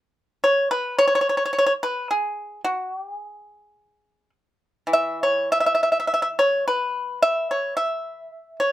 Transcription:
0.44 0.69 C#5 medium
0.71 0.96 B4 medium
0.99 1.05 C#5 medium
1.07 1.13 C#5 medium
1.15 1.20 C#5 medium
1.21 1.27 C#5 soft
1.29 1.35 C#5 medium
1.37 1.43 C#5 soft
1.45 1.50 C#5 medium
1.53 1.57 C#5 soft
1.58 1.64 C#5 medium
1.66 1.72 C#5 medium
1.83 2.07 B4 medium
2.11 2.60 G#4 medium
2.64 2.94 F#4 medium
2.94 3.13 G4 medium
3.13 4.30 G#4 medium
4.87 8.30 E3 soft
4.93 5.19 E5 medium
5.23 5.48 C#5 medium
5.52 5.57 E5 medium
5.60 5.65 E5 soft
5.66 5.72 E5 medium
5.75 5.80 E5 soft
5.83 5.88 E5 soft
5.92 5.97 E5 soft
6.00 6.04 E5 soft
6.07 6.12 E5 soft
6.14 6.19 E5 medium
6.22 6.27 E5 medium
6.39 6.64 C#5 medium
6.68 7.18 B4 medium
7.22 7.47 E5 medium
7.51 7.75 C#5 medium
7.77 8.56 E5 medium
8.60 8.72 C#5 medium

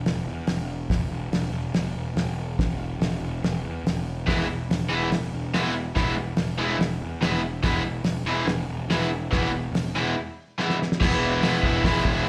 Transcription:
0.06 0.26 E1 medium
0.06 snare loud
0.06 open hi-hat medium
0.27 0.47 E2 medium
0.47 0.88 E1 medium
0.47 snare loud
0.47 open hi-hat medium
0.90 1.08 E1 medium
0.90 kick loud
0.90 snare loud
0.90 open hi-hat medium
1.09 1.30 E1 medium
1.31 1.51 E1 medium
1.31 snare loud
1.31 open hi-hat medium
1.52 1.73 E1 loud
1.74 1.94 E1 medium
1.74 snare loud
1.74 open hi-hat medium
1.95 2.15 E1 medium
2.16 2.56 E1 medium
2.16 snare loud
2.16 open hi-hat medium
2.59 2.78 E1 medium
2.59 kick loud
2.59 snare loud
2.59 open hi-hat medium
2.79 2.98 E1 medium
2.98 3.20 E1 medium
2.98 snare loud
2.98 open hi-hat medium
3.21 3.41 E1 medium
3.42 3.62 E1 medium
3.42 snare loud
3.42 open hi-hat medium
3.64 3.83 E2 medium
3.84 4.24 E1 medium
3.84 snare loud
3.84 open hi-hat medium
4.26 4.47 E1 medium
4.26 4.44 E3 loud
4.26 4.45 G#3 medium
4.26 4.45 B3 medium
4.26 4.46 E4 medium
4.26 kick loud
4.26 snare loud
4.26 open hi-hat medium
4.48 4.68 E1 medium
4.69 4.89 E1 medium
4.69 snare loud
4.69 open hi-hat medium
4.90 5.10 E1 medium
4.90 5.07 E3 loud
4.90 5.08 G#3 loud
4.90 5.08 B3 medium
4.90 5.09 E4 loud
5.11 5.31 E1 medium
5.11 snare loud
5.11 open hi-hat medium
5.33 5.53 E1 medium
5.54 5.93 E1 medium
5.54 5.71 E3 medium
5.54 5.71 G#3 medium
5.54 5.72 B3 loud
5.54 5.72 E4 loud
5.54 snare loud
5.54 open hi-hat medium
5.95 6.15 E1 medium
5.95 6.12 E3 medium
5.95 6.13 G#3 loud
5.95 6.14 B3 medium
5.95 6.14 E4 loud
5.95 kick loud
5.95 snare loud
5.95 open hi-hat medium
6.16 6.36 E1 medium
6.36 6.57 E1 medium
6.36 snare loud
6.36 open hi-hat medium
6.58 6.78 E1 loud
6.58 6.76 E3 medium
6.58 6.76 G#3 loud
6.58 6.76 B3 loud
6.58 6.77 E4 loud
6.79 6.99 E1 medium
6.79 snare loud
6.79 open hi-hat medium
7.01 7.21 E2 medium
7.22 7.61 E1 medium
7.22 7.39 E3 medium
7.22 7.39 G#3 medium
7.22 7.40 B3 medium
7.22 7.40 E4 loud
7.22 snare loud
7.22 open hi-hat medium
7.63 7.83 E1 medium
7.63 7.80 E3 medium
7.63 7.81 G#3 loud
7.63 7.81 B3 medium
7.63 7.82 E4 loud
7.63 kick loud
7.63 snare loud
7.63 open hi-hat medium
7.84 8.03 E1 medium
8.04 8.24 E1 medium
8.04 snare loud
8.04 open hi-hat medium
8.24 8.45 E1 medium
8.24 8.44 E3 loud
8.28 8.44 G#3 loud
8.28 8.45 B3 loud
8.28 8.45 E4 loud
8.45 8.66 E1 medium
8.45 snare loud
8.45 open hi-hat medium
8.66 8.87 E1 medium
8.88 9.28 E1 medium
8.88 9.07 E3 medium
8.88 9.07 G#3 medium
8.88 snare loud
8.88 open hi-hat medium
8.92 9.08 B3 medium
8.92 9.08 E4 loud
9.31 9.50 E1 medium
9.31 9.48 E3 loud
9.31 9.49 G#3 medium
9.31 9.50 B3 loud
9.31 9.50 E4 loud
9.31 kick loud
9.31 snare loud
9.31 open hi-hat medium
9.51 9.70 E1 medium
9.71 9.92 E1 medium
9.71 open hi-hat medium
9.75 snare loud
9.94 10.14 E1 medium
9.94 10.12 E3 loud
9.94 10.13 G#3 loud
9.94 10.13 B3 loud
9.98 10.13 E4 loud
10.58 10.75 E3 medium
10.58 10.76 G#3 loud
10.58 10.76 B3 loud
10.58 10.76 E4 loud
10.58 snare medium
10.70 snare medium
10.82 snare medium
10.92 snare medium
11.00 11.38 E1 medium
11.00 11.43 E3 loud
11.00 11.42 G#3 medium
11.00 11.43 B3 loud
11.00 11.45 E4 loud
11.00 kick loud
11.00 snare loud
11.00 crash loud
11.41 11.60 E1 medium
11.41 11.63 E3 medium
11.41 11.64 G#3 medium
11.41 snare loud
11.41 open hi-hat medium
11.45 11.64 B3 loud
11.45 11.65 E4 medium
11.63 11.82 E1 loud
11.63 11.85 E3 medium
11.63 11.84 G#3 loud
11.63 11.85 B3 medium
11.63 11.88 E4 loud
11.63 kick medium
11.84 12.03 E1 loud
11.84 12.26 E3 medium
11.84 12.27 G#3 loud
11.84 12.27 B3 loud
11.84 12.29 E4 loud
11.84 kick loud
11.84 snare loud
11.84 open hi-hat medium
12.04 12.24 E1 medium
12.04 kick medium
12.25 12.29 E1 medium

